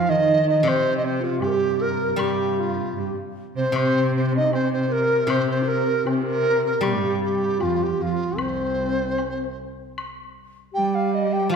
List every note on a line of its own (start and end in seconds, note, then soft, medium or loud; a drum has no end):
0.00 0.11 F3 loud
0.00 1.40 F3 medium
0.00 0.10 F4 medium
0.00 0.11 F5 medium
0.09 0.67 D#3 medium
0.09 0.43 D#4 medium
0.09 0.47 D#5 medium
0.44 0.56 D#4 medium
0.49 0.70 D#5 medium
0.56 0.65 D#4 medium
0.63 2.96 C3 medium
0.63 1.41 C3 medium
0.63 1.01 C4 medium
0.67 0.97 C5 loud
0.67 high woodblock medium
0.97 1.22 C4 medium
0.97 1.06 D#5 medium
1.05 1.26 C5 medium
1.21 1.42 F4 medium
1.21 1.40 F4 medium
1.40 2.18 G2 medium
1.40 1.49 G4 medium
1.40 1.83 G4 medium
1.40 high woodblock soft
1.40 low woodblock soft
1.47 1.56 A#4 medium
1.55 1.82 G4 medium
1.81 2.19 A#4 medium
1.81 2.11 A#4 medium
2.11 2.23 A#4 medium
2.16 2.93 G2 medium
2.16 4.52 G3 medium
2.16 2.67 G4 medium
2.16 high woodblock medium
2.21 2.61 G4 medium
2.60 3.01 F4 medium
2.97 3.15 G2 medium
2.97 3.15 G4 medium
2.97 3.18 G4 medium
3.56 3.74 C3 medium
3.56 3.74 C4 medium
3.56 3.74 C5 medium
3.72 5.26 C3 medium
3.72 4.49 C3 medium
3.72 4.11 C4 medium
3.72 high woodblock medium
3.77 4.12 C5 loud
4.15 4.35 C4 medium
4.15 4.34 C5 medium
4.33 4.54 D#4 medium
4.33 4.53 D#5 medium
4.52 5.25 C3 medium
4.52 4.71 C4 medium
4.52 4.71 C5 loud
4.52 high woodblock soft
4.52 low woodblock soft
4.72 4.89 C4 medium
4.72 4.94 C5 medium
4.89 5.29 A#4 medium
4.89 5.31 A#4 medium
5.27 7.59 C3 medium
5.27 5.47 C4 medium
5.27 5.49 C5 loud
5.27 high woodblock medium
5.31 6.03 C3 medium
5.47 5.67 C4 medium
5.47 5.70 C5 medium
5.65 6.07 A#4 medium
5.65 6.08 A#4 medium
6.05 6.80 C3 medium
6.05 6.24 C4 medium
6.05 6.10 C5 medium
6.05 high woodblock soft
6.05 low woodblock soft
6.11 6.16 C5 soft
6.16 6.19 D#4 soft
6.16 6.24 F4 soft
6.24 6.29 G4 soft
6.24 6.61 A#4 medium
6.24 6.65 A#4 medium
6.62 6.83 A#4 medium
6.66 6.77 A#4 medium
6.77 9.15 G3 medium
6.77 6.88 A#4 medium
6.81 7.62 G2 medium
6.81 7.20 G4 medium
6.81 high woodblock medium
6.86 7.23 G4 medium
7.20 7.60 G4 medium
7.24 7.65 G4 medium
7.59 7.98 F2 medium
7.59 7.97 F4 medium
7.59 high woodblock soft
7.59 low woodblock soft
7.63 7.85 F4 medium
7.83 8.04 G4 medium
7.97 8.34 F2 medium
7.97 8.34 F4 medium
8.02 8.42 F4 medium
8.35 9.53 C2 medium
8.35 9.51 C4 medium
8.35 high woodblock medium
8.40 9.58 C5 medium
9.18 high woodblock soft
9.18 low woodblock soft
9.98 high woodblock medium
10.72 11.54 G3 medium
10.72 11.28 G4 medium
10.72 10.96 G5 medium
10.95 11.16 F5 medium
11.14 11.34 D#5 medium
11.31 11.53 G4 medium
11.31 11.50 G5 medium
11.49 11.56 F3 medium
11.49 11.56 F4 medium
11.49 11.56 F5 medium